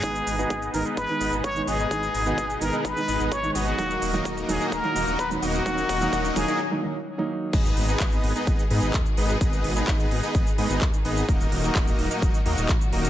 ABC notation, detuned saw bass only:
X:1
M:4/4
L:1/16
Q:1/4=128
K:G#m
V:1 name="Detuned saw bass" clef=bass
G,,,2 G,,,2 G,,,2 G,,, z G,,, z G,,, G,,, G,,,2 G,,,2 | G,,,2 G,,,2 G,,,2 G,,, z G,,, z G,,, G,,, G,,,2 G,,,2 | D,,,2 D,,,2 D,,,2 D,,, z D,,, z D,,, D,,, D,,,2 D,,,2 | D,,,2 D,,,2 D,,,2 D,,, z8 z |
G,,,2 G,,,2 G,,,2 G,,, z G,,, z G,, G,,, D,, z G,,,2 | G,,,2 G,,,2 G,,,2 G,,, z G,,, z G,, G,,, D,, z G,,,2 | D,,,2 D,,,2 D,,,2 D,,, z D,,, z D,, D,,, A,,, z D,,,2 |]